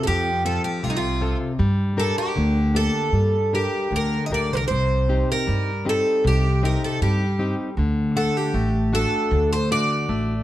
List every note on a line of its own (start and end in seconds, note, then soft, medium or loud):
0.00 0.30 C4 soft
0.00 0.30 F4 soft
0.00 0.30 A4 soft
0.00 0.07 A4 medium
0.06 0.57 F2 loud
0.06 0.81 F3 medium
0.06 0.43 G4 medium
0.45 1.06 C4 soft
0.45 1.06 F4 soft
0.45 0.64 A4 medium
0.45 1.06 A4 medium
0.64 0.84 G4 medium
0.83 1.33 C2 medium
0.83 1.57 C3 medium
0.83 0.90 F4 medium
0.90 0.97 D#4 medium
0.97 1.37 F4 medium
1.21 1.52 C4 medium
1.21 1.52 F4 soft
1.21 1.52 A4 medium
1.59 2.09 G2 loud
1.59 2.33 G3 medium
1.97 2.59 D4 medium
1.97 2.59 G4 soft
1.97 2.16 A4 medium
1.97 2.59 A#4 medium
2.18 2.76 G4 medium
2.36 2.87 D2 medium
2.36 3.10 D3 medium
2.74 3.37 A#3 soft
2.74 3.36 D4 soft
2.74 3.36 G4 soft
2.74 3.54 A4 medium
3.12 3.63 G2 medium
3.12 3.89 G3 medium
3.53 4.15 D4 soft
3.53 4.16 G4 soft
3.53 3.94 G4 medium
3.53 4.16 A#4 medium
3.91 4.16 D2 medium
3.91 4.68 D3 medium
3.96 4.26 A#4 medium
4.26 4.48 D2 medium
4.26 4.31 D#5 medium
4.31 4.62 D4 soft
4.31 4.62 G4 soft
4.31 4.63 A#4 soft
4.31 4.53 D5 medium
4.50 4.68 C2 medium
4.50 4.56 C5 medium
4.57 4.64 A#4 medium
4.68 5.21 C2 medium
4.68 5.46 C3 medium
4.68 5.31 C5 medium
5.09 5.70 C4 soft
5.09 5.71 D#4 soft
5.09 5.71 G4 soft
5.32 5.89 A#4 medium
5.47 5.98 G2 medium
5.47 6.22 G3 medium
5.85 6.47 C4 soft
5.85 6.47 D#4 soft
5.85 6.47 G4 soft
5.89 6.27 A4 medium
6.24 6.74 C2 loud
6.24 6.98 C3 medium
6.24 6.65 G4 medium
6.63 7.23 C4 soft
6.63 7.24 D#4 soft
6.63 7.24 G4 medium
6.63 6.83 A#4 medium
6.84 7.02 A4 medium
7.01 7.51 G2 medium
7.01 7.75 G3 medium
7.01 7.54 G4 medium
7.39 7.69 C4 soft
7.39 7.69 D#4 soft
7.39 7.70 G4 medium
7.77 8.27 D2 loud
7.77 8.52 D3 medium
8.16 8.53 A3 medium
8.16 8.78 D4 soft
8.16 8.37 A4 medium
8.16 8.78 F#5 medium
8.37 8.94 G4 medium
8.54 9.04 A1 medium
8.54 8.91 A3 medium
8.93 9.54 A3 medium
8.93 9.55 D4 soft
8.93 9.55 F#4 medium
8.93 9.52 A4 medium
9.31 9.82 D2 loud
9.31 10.07 D3 medium
9.53 9.70 C5 medium
9.71 10.08 A3 medium
9.71 10.34 D4 soft
9.71 10.33 F#4 medium
9.71 10.43 D5 loud
10.09 10.43 A1 medium
10.09 10.43 A3 medium